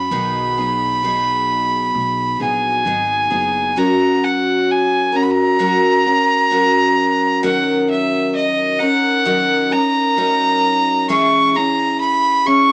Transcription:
0.00 0.12 C#4 soft
0.00 0.12 F#4 soft
0.00 2.41 B5 medium
0.11 1.90 B1 medium
0.11 0.57 B2 medium
0.11 0.57 D#3 medium
0.11 0.57 F#3 medium
0.11 0.57 B3 medium
0.11 0.57 D#4 medium
0.11 0.56 G#4 medium
0.57 1.02 F#3 soft
0.57 1.02 B3 soft
0.57 1.03 D#4 soft
0.57 1.03 G#4 soft
1.03 2.40 F#3 medium
1.03 2.40 B3 soft
1.03 2.39 D#4 medium
1.03 2.38 G#4 medium
1.95 2.38 B1 medium
2.40 2.82 A#1 medium
2.40 2.84 F#3 soft
2.40 2.85 B3 soft
2.40 2.86 D#4 soft
2.40 2.86 G#4 soft
2.40 3.80 G#5 medium
2.85 3.27 G#1 medium
2.85 3.31 F#3 medium
2.85 3.30 B3 medium
2.85 3.29 D#4 medium
2.85 3.29 G#4 medium
3.30 3.73 F#1 medium
3.30 3.75 F#3 soft
3.30 3.77 B3 soft
3.30 3.77 D#4 soft
3.30 3.77 G#4 soft
3.76 5.59 F#3 medium
3.76 5.14 C#4 medium
3.76 5.13 F#4 medium
3.76 5.12 A#4 medium
3.76 4.26 A#5 medium
4.24 4.72 F#5 medium
4.71 5.17 G#5 medium
5.12 5.58 C#4 soft
5.12 5.59 F#4 soft
5.12 5.59 A#4 soft
5.12 5.24 A#5 medium
5.22 5.32 B5 medium
5.30 7.44 A#5 loud
5.59 6.05 F#3 medium
5.59 6.06 C#4 medium
5.59 6.05 F#4 medium
5.59 6.03 A#4 medium
6.04 6.50 C#4 soft
6.04 6.51 F#4 soft
6.04 6.51 A#4 soft
6.50 7.42 F#3 medium
6.50 7.43 C#4 medium
6.50 7.43 F#4 medium
6.50 7.43 A#4 medium
7.43 8.80 D#3 medium
7.43 8.80 F#3 medium
7.43 8.82 C#4 medium
7.43 8.79 A#4 medium
7.43 7.87 F#5 medium
7.90 8.32 E5 medium
8.35 8.81 D#5 medium
8.79 9.25 C#4 soft
8.79 9.25 D#4 soft
8.79 9.25 A#4 soft
8.79 9.74 F#5 loud
9.25 9.71 D#3 medium
9.25 9.71 F#3 medium
9.25 9.72 C#4 medium
9.25 9.71 D#4 medium
9.25 9.70 A#4 medium
9.71 10.16 C#4 soft
9.71 10.16 D#4 soft
9.71 10.17 A#4 soft
9.71 11.09 A#5 loud
10.16 11.08 F#3 medium
10.16 11.09 C#4 medium
10.16 11.09 D#4 medium
10.16 11.10 A#4 medium
11.09 11.55 E3 medium
11.09 11.55 G#3 medium
11.09 11.55 C#4 medium
11.09 11.55 E4 medium
11.09 11.54 G#4 medium
11.09 11.57 C#6 loud
11.55 12.47 C#4 soft
11.55 12.46 E4 soft
11.55 12.45 G#4 soft
11.55 12.00 A#5 loud
12.00 12.49 B5 loud
12.46 12.72 C#4 soft
12.46 12.72 E4 soft
12.46 12.72 G#4 medium
12.46 12.72 C#6 loud

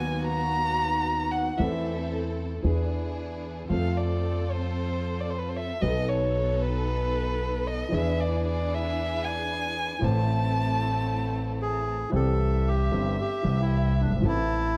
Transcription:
0.00 1.48 D#2 medium
0.00 1.49 D#2 medium
0.00 1.48 D#3 medium
0.00 1.48 F#3 soft
0.00 1.48 B3 medium
0.00 1.48 B3 soft
0.00 1.48 D#4 medium
0.00 1.48 F#4 medium
0.00 1.49 F#4 medium
0.00 0.26 G#5 medium
0.27 1.32 A#5 loud
1.31 1.59 F#5 medium
1.58 2.59 E2 medium
1.58 2.59 E3 medium
1.58 2.59 A3 soft
1.58 2.59 C4 medium
1.58 2.60 C4 medium
1.58 2.59 E4 medium
1.58 2.59 A4 medium
1.58 2.60 A4 medium
1.58 2.11 E5 medium
2.62 3.65 E2 medium
2.62 2.64 E3 soft
2.62 3.65 E3 medium
2.62 3.65 B3 soft
2.62 3.64 D4 medium
2.62 3.65 D4 soft
2.62 3.65 E4 soft
2.62 3.65 G#4 medium
2.67 3.66 G#4 medium
3.69 5.71 F2 medium
3.69 5.71 F3 medium
3.69 5.70 A3 soft
3.69 5.70 C4 medium
3.69 5.71 C4 soft
3.69 5.71 F4 medium
3.69 5.71 A4 medium
3.69 5.72 A4 medium
3.69 3.99 F5 medium
3.97 4.53 D5 medium
4.51 5.22 C5 medium
5.21 5.31 D5 medium
5.30 5.40 C5 medium
5.38 5.51 B4 medium
5.49 5.58 C5 medium
5.56 5.83 E5 medium
5.80 7.82 B1 medium
5.80 7.81 B2 medium
5.80 7.81 F#3 medium
5.80 7.81 B3 medium
5.80 7.81 D#4 medium
5.80 7.82 D#4 soft
5.80 7.81 A4 medium
5.80 6.11 D#5 medium
5.84 7.83 A4 medium
6.09 6.63 C#5 medium
6.61 7.68 B4 medium
7.67 7.95 D#5 medium
7.90 9.91 E2 medium
7.90 9.92 E2 medium
7.90 9.91 E3 medium
7.90 9.91 B3 soft
7.90 9.91 D4 medium
7.90 9.92 D4 soft
7.90 9.91 E4 medium
7.90 9.91 G#4 medium
7.90 9.92 G#4 medium
7.90 8.22 E5 medium
8.20 8.45 D5 medium
8.46 8.76 D5 medium
8.74 9.25 E5 loud
9.24 10.06 G#5 loud
9.99 12.02 A1 medium
9.99 12.03 A1 medium
9.99 12.03 A2 medium
9.99 12.02 E3 soft
9.99 12.02 A3 soft
9.99 12.03 A3 medium
9.99 12.03 C4 medium
9.99 12.02 E4 medium
10.03 12.04 C5 medium
10.03 11.88 A5 medium
11.62 12.11 G#4 medium
12.10 12.88 C2 medium
12.10 12.89 C2 medium
12.10 12.88 C3 medium
12.10 12.87 E3 medium
12.10 12.88 G3 medium
12.10 12.88 C4 medium
12.14 12.89 G4 medium
12.14 12.69 A4 medium
12.14 14.27 E5 medium
12.68 13.16 G4 medium
12.91 13.15 G1 medium
12.91 13.14 G2 medium
12.91 13.14 E3 medium
12.91 13.15 G3 medium
12.91 13.14 C4 medium
12.91 13.15 G4 medium
13.21 13.61 G4 medium
13.42 14.20 C2 medium
13.42 14.04 C2 medium
13.42 14.21 C3 medium
13.42 14.19 E3 soft
13.42 14.20 G3 soft
13.42 14.21 C4 medium
13.42 14.21 G4 medium
13.62 14.01 E4 medium
14.01 14.11 F#1 soft
14.01 14.10 F#1 soft
14.01 14.12 D4 medium
14.10 14.18 G1 soft
14.10 14.16 G1 soft
14.16 14.24 G#1 medium
14.16 14.23 G#1 medium
14.21 14.77 A1 medium
14.21 14.77 A2 medium
14.21 14.77 E3 medium
14.21 14.77 A3 medium
14.21 14.77 C4 medium
14.21 14.77 A4 medium
14.26 14.77 E4 loud
14.26 14.77 A5 medium

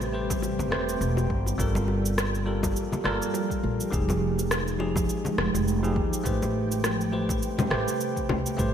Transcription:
0.00 0.72 A1 medium
0.00 1.26 C3 medium
0.00 3.88 G3 medium
0.00 0.13 A3 medium
0.00 1.28 C4 medium
0.00 0.13 G4 medium
0.00 3.88 G4 medium
0.00 0.14 B4 medium
0.00 0.15 C5 loud
0.00 high bongo medium
0.00 shaker soft
0.13 0.68 A3 medium
0.13 0.69 G4 medium
0.13 0.69 B4 medium
0.13 0.69 C5 medium
0.30 kick medium
0.30 low conga medium
0.30 shaker medium
0.42 high bongo medium
0.42 shaker medium
0.59 high conga medium
0.59 low conga medium
0.59 shaker soft
0.71 0.97 E1 medium
0.71 0.90 A3 medium
0.71 0.90 G4 medium
0.71 0.90 B4 medium
0.71 0.90 C5 loud
0.71 cross-stick medium
0.71 high bongo soft
0.71 high conga medium
0.89 shaker medium
1.01 1.30 E1 medium
1.01 shaker medium
1.17 high bongo medium
1.17 shaker soft
1.30 1.55 G1 medium
1.30 6.21 F3 medium
1.30 3.90 A#3 medium
1.30 kick loud
1.46 high bongo medium
1.46 shaker medium
1.58 2.72 G1 medium
1.58 2.43 G3 medium
1.58 2.43 F4 medium
1.58 2.44 A4 medium
1.58 2.44 A#4 medium
1.58 kick loud
1.58 shaker medium
1.75 low conga medium
1.75 shaker soft
1.88 high bongo medium
2.06 shaker medium
2.18 cross-stick medium
2.18 high bongo soft
2.18 shaker medium
2.35 shaker soft
2.46 3.01 G3 medium
2.46 3.02 F4 medium
2.46 3.02 A4 medium
2.46 3.02 A#4 medium
2.63 kick loud
2.63 high bongo medium
2.63 low conga medium
2.63 shaker medium
2.76 shaker medium
2.92 high bongo soft
2.92 high conga medium
2.92 low conga medium
2.92 shaker soft
3.04 3.19 G1 medium
3.04 3.23 G3 medium
3.04 3.23 F4 medium
3.04 3.23 A4 medium
3.04 3.24 A#4 loud
3.04 cross-stick medium
3.04 high conga medium
3.22 shaker medium
3.34 high bongo medium
3.34 shaker medium
3.51 kick medium
3.51 shaker soft
3.63 3.77 A#1 medium
3.63 high bongo medium
3.80 shaker medium
3.91 5.05 F1 medium
3.91 4.76 F3 medium
3.91 6.23 G#3 medium
3.91 4.76 D#4 medium
3.91 6.23 D#4 medium
3.91 4.77 G4 medium
3.91 4.77 G#4 medium
3.91 8.74 G5 medium
3.91 kick loud
3.91 shaker medium
4.09 high bongo medium
4.09 low conga medium
4.09 shaker soft
4.38 high bongo soft
4.38 shaker medium
4.51 cross-stick medium
4.51 shaker medium
4.68 shaker soft
4.79 5.34 F3 medium
4.79 5.35 D#4 medium
4.79 5.35 G4 medium
4.79 5.35 G#4 medium
4.79 high bongo medium
4.96 kick medium
4.96 low conga medium
4.96 shaker medium
5.09 high bongo soft
5.09 shaker soft
5.25 high conga medium
5.25 low conga medium
5.25 shaker soft
5.38 5.52 F1 medium
5.38 cross-stick medium
5.38 high conga medium
5.54 5.98 F1 medium
5.54 high bongo medium
5.54 shaker medium
5.68 shaker medium
5.83 5.98 F3 medium
5.83 5.98 D#4 medium
5.83 5.99 G4 medium
5.83 5.99 G#4 medium
5.83 high bongo soft
5.83 shaker soft
5.96 6.10 D#2 medium
5.96 kick loud
6.13 shaker medium
6.24 7.38 A1 medium
6.24 8.74 C3 medium
6.24 8.74 G3 medium
6.24 7.09 A3 medium
6.24 7.09 G4 medium
6.24 7.10 B4 medium
6.24 7.10 C5 medium
6.24 kick loud
6.24 shaker soft
6.42 high bongo soft
6.42 low conga medium
6.42 shaker soft
6.72 shaker medium
6.84 cross-stick medium
6.84 high bongo medium
6.84 shaker medium
7.01 shaker soft
7.12 7.67 A3 medium
7.12 7.68 G4 medium
7.12 7.68 B4 medium
7.12 7.68 C5 medium
7.12 high bongo soft
7.29 kick medium
7.29 low conga medium
7.29 shaker medium
7.42 shaker medium
7.58 high bongo medium
7.58 high conga medium
7.58 low conga medium
7.58 shaker soft
7.70 7.85 A1 medium
7.70 7.89 A3 medium
7.70 7.89 G4 medium
7.70 7.89 B4 medium
7.70 7.90 C5 medium
7.70 cross-stick medium
7.70 high conga medium
7.88 high bongo soft
7.88 shaker medium
8.00 shaker medium
8.17 kick medium
8.17 shaker soft
8.29 8.43 C2 medium
8.29 high bongo medium
8.29 low conga medium
8.46 shaker medium
8.57 8.74 A1 medium
8.57 8.74 A3 medium
8.57 8.74 C4 medium
8.57 8.74 G4 medium
8.57 8.74 B4 medium
8.57 8.74 C5 loud
8.57 kick loud
8.57 high bongo medium
8.57 shaker soft

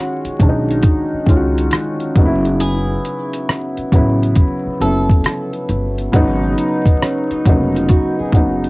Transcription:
0.00 0.17 D#3 medium
0.00 0.17 G#3 medium
0.00 0.18 C#4 medium
0.00 0.22 F#4 loud
0.00 2.60 F#4 medium
0.25 muted upright bass stroke soft
0.25 closed hi-hat soft
0.39 0.79 B1 medium
0.39 1.15 D#3 medium
0.39 1.15 G#3 medium
0.39 1.16 C#4 medium
0.39 0.50 D4 medium
0.39 kick medium
0.39 closed hi-hat medium
0.49 1.20 D#4 medium
0.70 closed hi-hat soft
0.82 kick medium
0.82 closed hi-hat medium
1.13 muted upright bass stroke soft
1.26 1.67 C#2 medium
1.26 2.15 D#3 medium
1.26 2.16 G#3 medium
1.26 2.16 C#4 medium
1.26 1.37 F4 medium
1.26 kick medium
1.26 closed hi-hat medium
1.36 2.20 F#4 medium
1.58 closed hi-hat soft
1.71 cross-stick loud
1.71 closed hi-hat medium
2.00 closed hi-hat soft
2.15 2.95 F#1 loud
2.15 3.59 C#3 medium
2.15 3.60 F#3 medium
2.15 3.61 B3 medium
2.15 2.26 D#4 medium
2.15 kick medium
2.15 closed hi-hat soft
2.25 3.65 E4 loud
2.45 closed hi-hat soft
2.60 4.77 G#4 medium
2.60 closed hi-hat medium
3.05 closed hi-hat medium
3.34 closed hi-hat medium
3.49 cross-stick loud
3.49 closed hi-hat medium
3.77 muted upright bass stroke soft
3.77 closed hi-hat soft
3.92 4.32 A1 medium
3.92 4.68 C#3 medium
3.92 4.68 F#3 medium
3.92 4.69 B3 medium
3.92 4.70 E4 medium
3.92 kick medium
3.92 closed hi-hat medium
4.23 closed hi-hat soft
4.35 kick medium
4.35 closed hi-hat medium
4.66 muted upright bass stroke soft
4.80 5.20 F#1 medium
4.80 5.90 C#3 medium
4.80 5.91 F#3 medium
4.80 5.91 B3 medium
4.80 5.92 E4 medium
4.80 5.50 A4 medium
4.80 closed hi-hat medium
5.09 kick medium
5.09 closed hi-hat soft
5.24 cross-stick loud
5.24 closed hi-hat medium
5.53 closed hi-hat soft
5.69 6.09 G1 medium
5.69 closed hi-hat medium
5.98 closed hi-hat soft
6.12 6.53 G#1 loud
6.12 7.22 C#3 loud
6.12 7.23 F#3 loud
6.12 7.24 B3 loud
6.12 7.24 D#4 loud
6.12 kick loud
6.12 closed hi-hat medium
6.58 closed hi-hat medium
6.86 kick medium
6.86 closed hi-hat medium
7.02 7.31 C#4 medium
7.02 cross-stick loud
7.02 closed hi-hat medium
7.31 7.75 D#4 medium
7.31 muted upright bass stroke soft
7.31 closed hi-hat soft
7.45 7.85 F1 medium
7.45 8.21 C#3 medium
7.45 8.22 F#3 medium
7.45 7.55 A#3 medium
7.45 8.23 D#4 loud
7.45 kick medium
7.45 closed hi-hat medium
7.54 8.25 B3 medium
7.75 7.89 F4 medium
7.75 closed hi-hat soft
7.88 8.17 F#4 medium
7.88 kick medium
7.88 closed hi-hat medium
8.19 8.70 G#4 medium
8.19 muted upright bass stroke soft
8.33 8.70 F#1 medium
8.33 8.70 C#3 medium
8.33 8.70 F#3 medium
8.33 8.70 B3 medium
8.33 kick medium
8.33 closed hi-hat soft
8.37 8.70 D#4 medium
8.64 closed hi-hat soft

